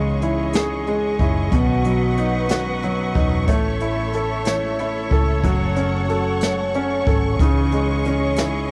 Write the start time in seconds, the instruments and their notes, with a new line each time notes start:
Already playing: fingered electric bass C#2, steel-string acoustic guitar C#3 E3 C#4 D#4 G#4, grand piano C#3 G#3, string section G#4 C#5 D#5 C#6
0.21 steel-string acoustic guitar E3 C#4 D#4 G#4, grand piano E4, closed hi-hat
0.53 steel-string acoustic guitar C#3 E3 C#4 D#4 G#4, grand piano G#4, snare, closed hi-hat
0.87 grand piano G#3, closed hi-hat
1.19 fingered electric bass F#1, steel-string acoustic guitar C#4 D#4 G#4, grand piano E4, kick, closed hi-hat
1.51 fingered electric bass B1, steel-string acoustic guitar B2 D#3 F#3 B3 C#4 F#4, grand piano B2, string section B4 F#5, kick, closed hi-hat
1.84 grand piano F#3, closed hi-hat
2.16 steel-string acoustic guitar F#3 B3 C#4 F#4, grand piano D#4, closed hi-hat
2.49 steel-string acoustic guitar B2 D#3 F#3 B3 C#4 F#4, grand piano F#4, snare, closed hi-hat
2.83 grand piano F#3, closed hi-hat
3.15 fingered electric bass E1, steel-string acoustic guitar F#3 B3 C#4 F#4, grand piano D#4, kick, closed hi-hat
3.48 fingered electric bass A1, steel-string acoustic guitar A2 E3 A3 C#4 E4 A4, grand piano A3, string section A4 C#5 E5, kick, closed hi-hat
3.80 grand piano E4, closed hi-hat
4.12 steel-string acoustic guitar A3 C#4 E4 A4, grand piano A4, closed hi-hat
4.45 steel-string acoustic guitar A2 E3 A3 C#4 E4 A4, grand piano C#5, snare, closed hi-hat
4.79 grand piano E4, closed hi-hat
5.10 fingered electric bass C#2, steel-string acoustic guitar A3 C#4 E4 A4, grand piano A4, kick, closed hi-hat
5.43 fingered electric bass F#1, steel-string acoustic guitar F#2 C#3 F#3 A3 C#4 A4, grand piano F#3, string section F#5 C#6, kick, closed hi-hat
5.76 grand piano C#4, closed hi-hat
6.09 steel-string acoustic guitar F#3 A3 C#4 A4, grand piano A4, closed hi-hat
6.41 steel-string acoustic guitar F#2 C#3 F#3 A3 C#4 A4, grand piano C#5, snare, closed hi-hat
6.74 grand piano C#4, closed hi-hat
7.06 fingered electric bass G#1, steel-string acoustic guitar F#3 A3 C#4 A4, grand piano A4, kick, closed hi-hat
7.39 fingered electric bass C#2, steel-string acoustic guitar C#3 E3 C#4 D#4 G#4, grand piano C#3, string section G#4 C#5 D#5, kick, closed hi-hat
7.72 grand piano G#3, closed hi-hat
8.04 steel-string acoustic guitar E3 C#4 D#4 G#4, grand piano C#4, closed hi-hat
8.36 steel-string acoustic guitar C#3 E3 C#4 D#4 G#4, grand piano E4, snare, closed hi-hat